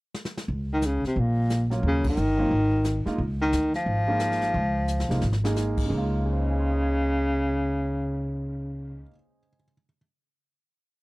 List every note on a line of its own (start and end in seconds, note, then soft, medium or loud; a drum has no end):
0.14 snare medium
0.25 snare medium
0.37 snare medium
0.48 0.99 C#2 medium
0.48 brush sweep soft
0.48 kick soft
0.73 0.87 D#3 medium
0.82 1.05 C#3 medium
0.82 snare soft
0.82 hi-hat pedal medium
1.04 1.21 C3 medium
1.04 muted upright bass stroke soft
1.04 snare soft
1.16 1.80 A#1 medium
1.16 1.73 A#2 medium
1.16 brush sweep soft
1.16 kick soft
1.50 snare soft
1.50 hi-hat pedal soft
1.70 2.15 F#3 soft
1.70 2.15 A#3 medium
1.70 2.15 C#4 soft
1.70 2.16 F4 medium
1.70 snare soft
1.83 2.15 D#2 medium
1.83 brush sweep soft
1.83 kick soft
1.87 2.05 C#3 loud
2.04 kick medium
2.04 ride medium
2.09 3.05 D#3 medium
2.17 2.49 G1 medium
2.17 hi-hat pedal soft
2.37 2.50 F#3 medium
2.37 2.50 A#3 medium
2.37 2.50 C4 soft
2.37 2.51 F4 medium
2.51 3.03 G#1 medium
2.51 brush sweep soft
2.51 kick soft
2.84 snare medium
2.84 hi-hat pedal medium
3.06 3.18 G#3 medium
3.06 3.18 A#3 medium
3.06 3.18 D#4 medium
3.06 3.18 F4 medium
3.06 muted upright bass stroke soft
3.06 snare soft
3.18 3.50 C#2 medium
3.18 brush sweep soft
3.18 kick soft
3.41 3.73 D#3 medium
3.52 3.85 D2 medium
3.52 snare medium
3.52 hi-hat pedal medium
3.74 5.53 F3 loud
3.74 snare soft
3.86 4.51 G#1 medium
3.86 brush sweep soft
3.86 kick soft
4.08 4.52 G#3 medium
4.08 4.52 A#3 medium
4.08 4.53 D#4 medium
4.08 4.53 F4 medium
4.19 snare medium
4.19 hi-hat pedal medium
4.32 snare soft
4.41 snare soft
4.54 5.06 C#2 medium
4.54 brush sweep soft
4.54 kick soft
4.88 hi-hat pedal medium
5.00 snare soft
5.09 5.21 C2 medium
5.09 5.22 G#3 medium
5.09 5.22 A#3 medium
5.09 5.22 D#4 soft
5.09 5.23 F4 medium
5.09 snare medium
5.21 5.87 G#1 medium
5.21 snare medium
5.33 snare medium
5.44 5.87 G#3 medium
5.44 5.89 A#3 medium
5.44 5.89 D#4 medium
5.44 5.89 G#4 medium
5.44 snare medium
5.56 snare medium
5.56 hi-hat pedal medium
5.77 kick medium
5.77 crash medium
5.85 9.03 C#3 medium
5.85 9.06 G#3 medium
5.90 9.04 C#2 medium
5.90 9.06 C#3 medium
5.90 9.09 A#3 soft
5.94 9.12 D#4 soft
5.94 9.15 F4 medium
6.25 9.39 G#4 soft
6.33 9.47 C5 soft
6.41 9.55 D#5 soft
6.50 9.64 G#5 soft
6.60 9.73 C6 soft
6.71 9.85 D#6 soft
6.83 9.96 G#6 soft